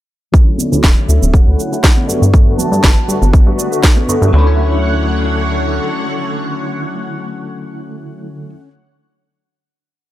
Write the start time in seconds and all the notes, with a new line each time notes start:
0.32 D3 F#3 A3 C#4 E4 C#5 F#5, kick, shaker
0.37 C#4
0.58 D5, high conga, shaker
0.72 D2 D3 F#3 A3 C#4 E4 D5, shaker
0.84 D1, kick, snare, shaker
0.97 shaker
1.08 D2 D3 F#3 A3 C#4 E4 E5, shaker
1.22 D1, high conga, shaker
1.33 F#3 C#4 F#5, kick, shaker
1.47 D2 D3 F#3 A3 C#4 E4, shaker
1.58 A3 C#4, shaker
1.72 D3 F#3 A3 C#4 E4, shaker
1.84 kick, snare, shaker
1.96 high conga, shaker
2.07 G2 D3 G3 A3 B3 D4 F#4 B4, shaker
2.12 F#3
2.22 G2, shaker
2.33 D3 A3 B3 F#4, kick, shaker
2.47 shaker
2.58 A5, high conga, low conga, shaker
2.72 G2 D3 G3 A3 B3 F#4, shaker
2.84 G1, kick, snare, shaker
2.97 shaker
3.08 G2 D3 G3 A3 B3 F#4, shaker
3.22 G1, high conga, shaker
3.33 F#3 B3 D4, kick, shaker
3.47 G2 D3 G3 A3 B3 F#4, shaker
3.58 B3 D4, shaker
3.71 D3 A3 B3 F#4, shaker
3.83 kick, snare, shaker
3.97 high conga, shaker
4.08 G2 D3 G3 A3 B3 F#4, shaker
4.22 G2, shaker
4.28 F#3
4.33 D2 D3 F#3 A3 C#4 E4 C#5 F#5
4.38 A3
4.47 C#4